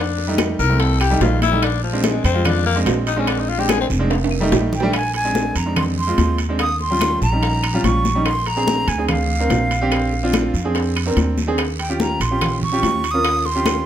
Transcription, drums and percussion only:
0.18 high bongo soft
0.18 high conga soft
0.38 high bongo medium
0.38 high conga medium
0.38 high timbale medium
0.38 low timbale medium
0.38 short guiro medium
0.38 claves medium
0.59 high bongo soft
0.59 high conga soft
0.59 short guiro medium
0.80 high bongo medium
0.80 high conga soft
0.80 high timbale medium
0.80 long guiro medium
1.00 high conga soft
1.00 high timbale medium
1.00 claves medium
1.21 high bongo medium
1.21 low bongo medium
1.21 high conga medium
1.21 low timbale medium
1.21 short guiro medium
1.42 high bongo soft
1.42 high conga medium
1.42 high timbale medium
1.42 short guiro medium
1.62 high bongo medium
1.62 high conga soft
1.62 high timbale medium
1.62 long guiro medium
1.62 claves medium
1.84 high conga soft
2.04 high bongo medium
2.04 high conga loud
2.04 high timbale medium
2.04 low timbale medium
2.04 short guiro medium
2.24 high conga soft
2.24 high timbale medium
2.24 short guiro medium
2.45 high bongo medium
2.45 high conga soft
2.45 low conga medium
2.45 high timbale loud
2.45 long guiro medium
2.45 claves medium
2.66 high conga soft
2.86 high bongo medium
2.86 low bongo medium
2.86 high conga soft
2.86 high timbale medium
2.86 low timbale medium
2.86 short guiro medium
3.07 high timbale medium
3.07 short guiro medium
3.27 high bongo medium
3.27 high conga soft
3.27 high timbale medium
3.27 long guiro medium
3.27 claves medium
3.49 high bongo soft
3.49 high conga soft
3.69 high bongo medium
3.69 high conga medium
3.69 high timbale medium
3.69 low timbale medium
3.69 short guiro medium
3.69 claves medium
3.90 high bongo soft
3.90 high conga soft
3.90 short guiro medium
4.10 high bongo medium
4.10 high conga soft
4.10 high timbale medium
4.10 long guiro medium
4.24 high timbale medium
4.31 high conga soft
4.31 claves medium
4.52 high bongo medium
4.52 low bongo medium
4.52 high conga medium
4.52 low timbale medium
4.52 short guiro medium
4.73 high bongo soft
4.73 low conga medium
4.73 short guiro medium
4.80 low timbale medium
4.93 high bongo medium
4.93 high conga soft
4.93 high timbale medium
4.93 long guiro medium
4.93 claves medium
5.14 high bongo soft
5.14 high conga soft
5.14 high timbale medium
5.35 high bongo medium
5.35 high conga medium
5.35 short guiro medium
5.56 high bongo soft
5.56 high timbale medium
5.56 short guiro medium
5.76 high bongo medium
5.76 high conga soft
5.76 low conga medium
5.76 high timbale loud
5.76 long guiro medium
5.76 claves medium
5.97 high conga soft
6.18 high bongo soft
6.18 low bongo medium
6.18 high conga medium
6.18 high timbale medium
6.18 short guiro medium
6.38 high timbale medium
6.38 short guiro medium
6.59 high bongo medium
6.59 high conga soft
6.59 high timbale medium
6.59 long guiro medium
6.59 claves medium
6.80 high bongo soft
6.80 high conga soft
7.01 high bongo medium
7.01 high conga medium
7.01 high timbale medium
7.01 short guiro medium
7.01 claves medium
7.22 high bongo soft
7.22 high conga soft
7.22 short guiro medium
7.43 high bongo medium
7.43 high conga soft
7.43 high timbale medium
7.43 long guiro medium
7.63 high conga soft
7.63 high timbale medium
7.63 claves medium
7.84 high bongo soft
7.84 low bongo medium
7.84 high conga medium
7.84 high timbale medium
7.84 short guiro medium
8.05 high conga medium
8.05 short guiro medium
8.25 high bongo medium
8.25 high conga soft
8.25 high timbale medium
8.25 long guiro medium
8.25 claves medium
8.46 high bongo soft
8.46 high conga soft
8.46 high timbale medium
8.67 high bongo medium
8.67 high conga loud
8.67 short guiro medium
8.88 high bongo soft
8.88 high timbale medium
8.88 short guiro medium
9.08 high bongo medium
9.08 high conga soft
9.08 low conga medium
9.08 high timbale medium
9.08 long guiro medium
9.08 claves medium
9.29 high conga soft
9.50 high bongo soft
9.50 low bongo medium
9.50 high conga medium
9.50 high timbale medium
9.50 low timbale medium
9.50 short guiro medium
9.71 high timbale medium
9.71 short guiro medium
9.92 high bongo medium
9.92 high conga soft
9.92 high timbale medium
9.92 long guiro medium
9.92 claves medium
10.13 high bongo soft
10.13 high conga soft
10.33 high bongo medium
10.33 high conga medium
10.33 high timbale medium
10.33 short guiro medium
10.33 claves medium
10.54 high bongo soft
10.54 high conga soft
10.54 short guiro medium
10.75 high bongo medium
10.75 high conga soft
10.75 high timbale medium
10.75 long guiro medium
10.96 high conga soft
10.96 high timbale medium
10.96 claves medium
11.17 high bongo soft
11.17 low bongo medium
11.17 high conga medium
11.17 high timbale medium
11.17 short guiro medium
11.38 high conga medium
11.38 short guiro medium
11.58 high bongo medium
11.58 high conga soft
11.58 high timbale medium
11.58 long guiro medium
11.58 claves medium
11.79 high bongo soft
11.79 high conga soft
11.79 high timbale medium
12.00 high bongo medium
12.00 high conga medium
12.00 short guiro medium
12.21 high bongo soft
12.21 high timbale medium
12.21 short guiro medium
12.41 high bongo medium
12.41 high conga soft
12.41 low conga medium
12.41 high timbale medium
12.41 long guiro medium
12.41 claves medium
12.63 high conga soft
12.63 low conga medium
12.83 high bongo soft
12.83 low bongo medium
12.83 high conga medium
12.83 high timbale medium
12.83 short guiro medium
13.04 high timbale medium
13.04 short guiro medium
13.24 high bongo medium
13.24 high conga soft
13.24 high timbale medium
13.24 long guiro medium
13.24 claves medium
13.45 high bongo soft
13.45 high conga soft
13.66 high bongo medium
13.66 high conga medium
13.66 high timbale medium
13.66 short guiro medium
13.66 claves medium

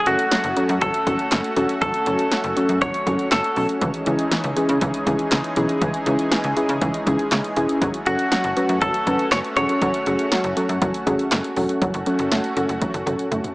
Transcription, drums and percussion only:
0.06 closed hi-hat medium
0.19 closed hi-hat medium
0.31 snare loud
0.31 closed hi-hat medium
0.44 closed hi-hat medium
0.57 closed hi-hat medium
0.69 closed hi-hat medium
0.81 kick loud
0.81 closed hi-hat medium
0.94 closed hi-hat medium
1.07 kick medium
1.07 closed hi-hat medium
1.19 closed hi-hat soft
1.32 snare loud
1.32 clap loud
1.32 closed hi-hat medium
1.44 closed hi-hat soft
1.56 closed hi-hat medium
1.69 closed hi-hat medium
1.82 kick loud
1.82 closed hi-hat medium
1.94 closed hi-hat medium
2.06 closed hi-hat medium
2.19 closed hi-hat medium
2.32 snare loud
2.32 closed hi-hat medium
2.44 closed hi-hat soft
2.57 closed hi-hat medium
2.69 closed hi-hat medium
2.82 kick loud
2.82 closed hi-hat medium
2.94 closed hi-hat medium
3.07 kick medium
3.07 closed hi-hat medium
3.19 closed hi-hat soft
3.32 snare loud
3.32 clap loud
3.32 closed hi-hat medium
3.44 closed hi-hat soft
3.56 open hi-hat medium
3.69 closed hi-hat medium
3.81 kick loud
3.81 closed hi-hat medium
3.94 closed hi-hat medium
4.06 closed hi-hat medium
4.19 closed hi-hat medium
4.31 snare loud
4.31 closed hi-hat medium
4.44 closed hi-hat medium
4.57 closed hi-hat medium
4.69 closed hi-hat medium
4.81 kick medium
4.81 closed hi-hat medium
4.94 closed hi-hat medium
5.07 kick medium
5.07 closed hi-hat medium
5.19 closed hi-hat soft
5.32 snare loud
5.32 clap loud
5.32 closed hi-hat medium
5.44 closed hi-hat soft
5.56 closed hi-hat medium
5.69 closed hi-hat soft
5.82 kick loud
5.82 closed hi-hat medium
5.94 closed hi-hat medium
6.06 closed hi-hat medium
6.19 closed hi-hat medium
6.32 snare loud
6.32 closed hi-hat medium
6.44 closed hi-hat medium
6.57 closed hi-hat medium
6.69 closed hi-hat medium
6.82 kick loud
6.82 closed hi-hat medium
6.94 closed hi-hat medium
7.07 kick medium
7.07 closed hi-hat medium
7.19 closed hi-hat soft
7.32 snare loud
7.32 clap loud
7.32 closed hi-hat medium
7.44 closed hi-hat soft
7.56 closed hi-hat medium
7.69 closed hi-hat medium
7.82 kick loud
7.82 closed hi-hat medium
7.94 closed hi-hat medium
8.06 closed hi-hat medium
8.19 closed hi-hat medium
8.32 snare loud
8.32 closed hi-hat medium
8.44 closed hi-hat medium
8.57 closed hi-hat medium
8.69 closed hi-hat medium
8.82 kick loud
8.82 closed hi-hat medium
8.94 closed hi-hat medium
9.07 kick medium
9.07 closed hi-hat medium
9.19 closed hi-hat soft
9.32 snare loud
9.32 clap loud
9.32 closed hi-hat medium
9.44 closed hi-hat soft
9.56 closed hi-hat medium
9.69 closed hi-hat medium
9.82 kick loud
9.82 closed hi-hat medium
9.94 closed hi-hat medium
10.06 closed hi-hat medium
10.19 closed hi-hat medium
10.32 snare loud
10.32 closed hi-hat medium
10.44 closed hi-hat medium
10.57 closed hi-hat medium
10.69 closed hi-hat medium
10.82 kick loud
10.82 closed hi-hat medium
10.94 closed hi-hat medium
11.07 kick medium
11.07 closed hi-hat medium
11.19 closed hi-hat soft
11.32 snare loud
11.32 clap loud
11.32 closed hi-hat medium
11.44 closed hi-hat soft
11.56 open hi-hat medium
11.69 closed hi-hat medium
11.82 kick loud
11.82 closed hi-hat medium
11.94 closed hi-hat medium
12.06 closed hi-hat medium
12.19 closed hi-hat medium
12.32 snare loud
12.32 closed hi-hat medium
12.44 closed hi-hat soft
12.57 closed hi-hat medium
12.69 closed hi-hat medium
12.82 kick loud
12.82 closed hi-hat medium
12.82 high tom medium
12.94 closed hi-hat medium
13.07 closed hi-hat medium
13.07 mid tom medium
13.19 closed hi-hat soft
13.32 closed hi-hat medium
13.32 mid tom medium
13.44 closed hi-hat soft
13.44 mid tom medium

